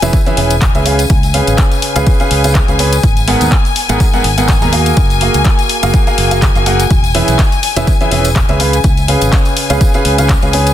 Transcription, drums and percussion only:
0.02 closed hi-hat medium
0.02 tambourine medium
0.13 kick loud
0.13 closed hi-hat medium
0.13 tambourine medium
0.26 closed hi-hat soft
0.26 tambourine soft
0.37 open hi-hat loud
0.50 closed hi-hat medium
0.50 tambourine medium
0.61 kick loud
0.61 clap loud
0.61 closed hi-hat medium
0.61 tambourine medium
0.75 closed hi-hat soft
0.75 tambourine soft
0.86 open hi-hat loud
0.99 closed hi-hat medium
0.99 tambourine medium
1.10 kick loud
1.10 closed hi-hat soft
1.10 tambourine medium
1.23 closed hi-hat soft
1.23 tambourine soft
1.34 open hi-hat loud
1.47 closed hi-hat soft
1.47 tambourine medium
1.58 kick loud
1.58 clap loud
1.58 closed hi-hat soft
1.58 tambourine medium
1.72 closed hi-hat soft
1.72 tambourine soft
1.82 open hi-hat loud
1.96 closed hi-hat soft
1.96 tambourine medium
2.07 kick loud
2.07 closed hi-hat medium
2.07 tambourine medium
2.20 closed hi-hat soft
2.20 tambourine soft
2.31 open hi-hat loud
2.44 closed hi-hat soft
2.44 tambourine medium
2.55 kick loud
2.55 clap loud
2.55 closed hi-hat soft
2.68 closed hi-hat soft
2.68 tambourine soft
2.79 open hi-hat loud
2.92 closed hi-hat medium
2.92 tambourine medium
3.03 kick loud
3.03 closed hi-hat soft
3.03 tambourine medium
3.17 closed hi-hat soft
3.17 tambourine soft
3.28 open hi-hat loud
3.41 closed hi-hat soft
3.41 tambourine medium
3.52 kick loud
3.52 clap loud
3.52 closed hi-hat soft
3.52 tambourine medium
3.65 closed hi-hat soft
3.65 tambourine soft
3.76 open hi-hat loud
3.89 closed hi-hat soft
3.89 tambourine medium
4.00 kick loud
4.00 closed hi-hat soft
4.00 tambourine medium
4.13 closed hi-hat soft
4.13 tambourine soft
4.24 open hi-hat loud
4.38 closed hi-hat soft
4.38 tambourine medium
4.48 kick loud
4.48 clap loud
4.48 closed hi-hat soft
4.48 tambourine medium
4.62 closed hi-hat soft
4.62 tambourine soft
4.73 open hi-hat loud
4.86 closed hi-hat soft
4.86 tambourine medium
4.97 kick loud
4.97 closed hi-hat soft
4.97 tambourine medium
5.10 closed hi-hat soft
5.10 tambourine soft
5.21 open hi-hat loud
5.34 closed hi-hat soft
5.34 tambourine medium
5.44 kick loud
5.44 clap loud
5.44 closed hi-hat soft
5.44 tambourine medium
5.59 closed hi-hat soft
5.59 tambourine soft
5.69 open hi-hat loud
5.83 closed hi-hat soft
5.83 tambourine medium
5.94 kick loud
5.94 closed hi-hat soft
5.94 tambourine medium
6.07 closed hi-hat soft
6.07 tambourine soft
6.18 open hi-hat loud
6.31 closed hi-hat soft
6.31 tambourine medium
6.42 kick loud
6.42 clap loud
6.42 closed hi-hat soft
6.42 tambourine medium
6.55 closed hi-hat soft
6.55 tambourine soft
6.66 open hi-hat loud
6.79 closed hi-hat medium
6.79 tambourine medium
6.90 kick loud
6.90 closed hi-hat medium
6.90 tambourine medium
7.04 closed hi-hat soft
7.04 tambourine soft
7.15 open hi-hat loud
7.28 closed hi-hat soft
7.28 tambourine medium
7.39 kick loud
7.39 clap loud
7.39 closed hi-hat soft
7.39 tambourine medium
7.52 closed hi-hat soft
7.52 tambourine soft
7.63 open hi-hat loud
7.76 closed hi-hat medium
7.76 tambourine medium
7.87 kick loud
7.87 closed hi-hat medium
7.87 tambourine medium
8.01 closed hi-hat soft
8.01 tambourine soft
8.12 open hi-hat loud
8.24 closed hi-hat soft
8.24 tambourine medium
8.36 kick medium
8.36 clap loud
8.36 closed hi-hat soft
8.49 closed hi-hat soft
8.49 tambourine soft
8.60 open hi-hat loud
8.73 closed hi-hat medium
8.73 tambourine medium
8.84 kick loud
8.84 closed hi-hat medium
8.84 tambourine medium
8.97 closed hi-hat soft
8.97 tambourine soft
9.08 open hi-hat loud
9.21 closed hi-hat medium
9.21 tambourine medium
9.32 kick loud
9.32 clap loud
9.32 closed hi-hat medium
9.32 tambourine medium
9.45 closed hi-hat soft
9.45 tambourine soft
9.57 open hi-hat medium
9.70 closed hi-hat medium
9.70 tambourine medium
9.81 kick loud
9.81 closed hi-hat medium
9.81 tambourine medium
9.94 closed hi-hat soft
9.94 tambourine soft
10.05 open hi-hat loud
10.18 closed hi-hat medium
10.18 tambourine medium
10.29 kick medium
10.29 clap loud
10.29 closed hi-hat medium
10.29 tambourine medium
10.43 closed hi-hat soft
10.43 tambourine soft
10.53 open hi-hat loud
10.67 closed hi-hat medium
10.67 tambourine medium

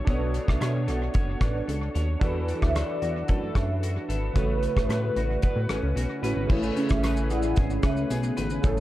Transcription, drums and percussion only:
0.07 kick loud
0.07 closed hi-hat medium
0.34 closed hi-hat soft
0.48 kick medium
0.48 cross-stick medium
0.61 cross-stick medium
0.61 closed hi-hat medium
0.88 closed hi-hat soft
1.14 kick medium
1.14 closed hi-hat medium
1.41 kick medium
1.41 cross-stick medium
1.41 closed hi-hat medium
1.69 closed hi-hat medium
1.95 closed hi-hat medium
2.21 kick loud
2.21 closed hi-hat medium
2.48 closed hi-hat soft
2.62 kick medium
2.62 cross-stick medium
2.76 cross-stick medium
2.76 closed hi-hat medium
3.02 closed hi-hat soft
3.28 kick medium
3.28 closed hi-hat medium
3.55 kick medium
3.55 cross-stick medium
3.55 closed hi-hat medium
3.83 closed hi-hat medium
4.10 closed hi-hat medium
4.36 kick loud
4.36 closed hi-hat medium
4.63 closed hi-hat soft
4.77 kick medium
4.77 cross-stick medium
4.90 cross-stick medium
4.90 closed hi-hat medium
5.16 closed hi-hat soft
5.42 kick medium
5.42 closed hi-hat soft
5.69 cross-stick medium
5.69 closed hi-hat soft
5.97 closed hi-hat medium
6.24 closed hi-hat medium
6.50 kick loud
6.50 crash loud
6.63 shaker medium
6.77 closed hi-hat medium
6.77 shaker soft
6.89 kick medium
6.89 cross-stick medium
6.89 shaker medium
7.03 cross-stick medium
7.03 closed hi-hat medium
7.03 tambourine loud
7.03 shaker medium
7.17 shaker medium
7.30 closed hi-hat medium
7.30 shaker medium
7.42 shaker soft
7.56 kick medium
7.56 closed hi-hat medium
7.56 shaker medium
7.70 shaker soft
7.83 kick medium
7.83 cross-stick loud
7.83 closed hi-hat medium
7.83 shaker medium
7.97 shaker medium
8.10 closed hi-hat medium
8.10 tambourine medium
8.10 shaker medium
8.23 shaker medium
8.37 closed hi-hat medium
8.37 shaker medium
8.50 shaker soft
8.64 kick loud
8.64 closed hi-hat medium
8.64 shaker medium

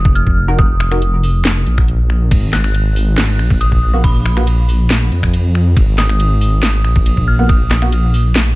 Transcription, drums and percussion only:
0.05 kick loud
0.15 closed hi-hat medium
0.27 kick medium
0.59 kick loud
0.59 closed hi-hat medium
0.80 finger snap medium
0.80 closed hi-hat medium
0.92 finger snap medium
1.02 closed hi-hat medium
1.23 open hi-hat medium
1.45 snare loud
1.45 closed hi-hat medium
1.67 closed hi-hat medium
1.78 finger snap medium
1.78 kick medium
1.88 closed hi-hat medium
2.10 finger snap medium
2.31 kick loud
2.31 closed hi-hat medium
2.31 ride medium
2.53 finger snap medium
2.53 snare medium
2.53 closed hi-hat medium
2.64 finger snap medium
2.75 closed hi-hat medium
2.75 ride soft
2.96 open hi-hat medium
3.18 snare loud
3.18 closed hi-hat medium
3.18 ride medium
3.39 finger snap medium
3.39 closed hi-hat medium
3.50 kick loud
3.61 closed hi-hat medium
3.61 ride soft
3.72 kick medium
4.04 kick loud
4.04 closed hi-hat medium
4.04 ride medium
4.26 finger snap medium
4.26 closed hi-hat soft
4.37 finger snap medium
4.47 closed hi-hat medium
4.47 ride soft
4.69 open hi-hat medium
4.90 snare loud
4.90 closed hi-hat medium
4.90 ride medium
5.12 closed hi-hat soft
5.23 finger snap medium
5.23 kick medium
5.34 closed hi-hat medium
5.34 ride soft
5.55 finger snap medium
5.77 kick loud
5.77 closed hi-hat medium
5.77 ride medium
5.98 finger snap medium
5.98 snare medium
5.98 closed hi-hat medium
6.09 finger snap medium
6.20 closed hi-hat medium
6.20 ride soft
6.41 open hi-hat medium
6.63 snare loud
6.63 closed hi-hat medium
6.63 ride medium
6.84 finger snap medium
6.84 closed hi-hat medium
6.96 kick loud
7.06 closed hi-hat medium
7.06 ride medium
7.17 kick medium
7.49 kick loud
7.49 closed hi-hat medium
7.49 ride medium
7.71 finger snap medium
7.71 snare medium
7.71 closed hi-hat medium
7.82 finger snap medium
7.82 closed hi-hat soft
7.92 closed hi-hat medium
7.92 ride soft
8.14 open hi-hat loud
8.36 snare loud
8.36 closed hi-hat medium
8.36 ride medium

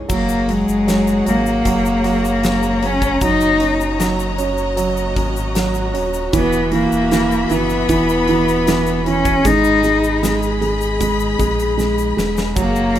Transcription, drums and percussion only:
0.09 kick loud
0.09 crash medium
0.09 shaker medium
0.29 shaker medium
0.49 closed hi-hat medium
0.68 shaker medium
0.88 snare loud
0.88 closed hi-hat medium
0.88 shaker medium
1.07 shaker soft
1.26 closed hi-hat medium
1.26 shaker soft
1.46 shaker soft
1.65 kick medium
1.65 closed hi-hat medium
1.65 shaker medium
1.86 shaker soft
2.04 snare soft
2.04 closed hi-hat medium
2.25 shaker soft
2.43 snare loud
2.43 closed hi-hat medium
2.43 shaker medium
2.63 shaker soft
2.83 closed hi-hat medium
3.02 kick medium
3.02 shaker medium
3.21 kick medium
3.21 closed hi-hat medium
3.21 shaker medium
3.41 shaker medium
3.60 closed hi-hat medium
3.81 shaker soft
4.00 snare loud
4.00 closed hi-hat medium
4.00 shaker medium
4.20 shaker soft
4.38 closed hi-hat medium
4.38 shaker soft
4.58 shaker soft
4.77 closed hi-hat medium
4.77 shaker medium
4.97 shaker soft
5.16 kick medium
5.16 closed hi-hat medium
5.36 shaker soft
5.55 snare loud
5.55 closed hi-hat loud
5.55 shaker medium
5.74 shaker soft
5.95 closed hi-hat medium
6.14 shaker medium
6.33 kick loud
6.33 closed hi-hat medium
6.33 shaker medium
6.53 shaker medium
6.72 closed hi-hat medium
6.92 shaker medium
7.11 snare loud
7.11 closed hi-hat medium
7.11 shaker medium
7.31 shaker soft
7.50 closed hi-hat medium
7.50 shaker soft
7.70 shaker soft
7.89 kick medium
7.89 closed hi-hat medium
7.89 shaker medium
8.09 shaker soft
8.28 closed hi-hat medium
8.48 closed hi-hat soft
8.48 shaker soft
8.67 snare loud
8.67 closed hi-hat medium
8.67 shaker medium
8.86 shaker soft
9.06 closed hi-hat medium
9.25 kick medium
9.25 closed hi-hat medium
9.25 shaker medium
9.45 kick loud
9.45 closed hi-hat medium
9.45 shaker medium
9.64 shaker medium
9.83 closed hi-hat medium
9.83 shaker soft
10.04 shaker medium
10.23 snare medium
10.23 closed hi-hat medium
10.23 shaker medium
10.43 shaker soft
10.62 closed hi-hat medium
10.81 shaker soft
11.01 kick medium
11.01 closed hi-hat medium
11.01 shaker medium
11.20 shaker soft
11.39 kick medium
11.39 closed hi-hat medium
11.39 shaker soft
11.59 closed hi-hat medium
11.59 shaker soft
11.79 snare medium
11.79 shaker medium
11.98 shaker soft
12.18 snare medium
12.18 shaker soft
12.37 snare medium
12.37 shaker soft
12.56 kick loud
12.56 crash medium
12.56 shaker medium
12.76 shaker medium
12.96 closed hi-hat medium

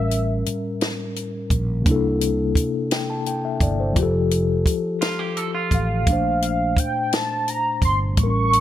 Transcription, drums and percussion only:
0.11 closed hi-hat medium
0.46 closed hi-hat medium
0.81 snare loud
0.81 closed hi-hat medium
1.16 closed hi-hat soft
1.50 kick medium
1.50 closed hi-hat medium
1.86 kick loud
1.86 closed hi-hat medium
2.21 closed hi-hat medium
2.55 kick medium
2.55 closed hi-hat medium
2.91 snare loud
2.91 closed hi-hat medium
3.26 closed hi-hat medium
3.60 kick medium
3.60 closed hi-hat medium
3.96 kick loud
3.96 closed hi-hat medium
4.31 closed hi-hat medium
4.66 kick medium
4.66 closed hi-hat medium
5.02 snare loud
5.02 closed hi-hat medium
5.37 closed hi-hat soft
5.71 kick medium
5.71 closed hi-hat soft
6.07 kick loud
6.07 closed hi-hat medium
6.42 closed hi-hat medium
6.77 kick medium
6.77 closed hi-hat medium
7.13 snare loud
7.13 closed hi-hat medium
7.48 closed hi-hat soft
7.82 kick medium
7.82 closed hi-hat soft
8.17 kick loud
8.17 closed hi-hat medium
8.53 closed hi-hat medium

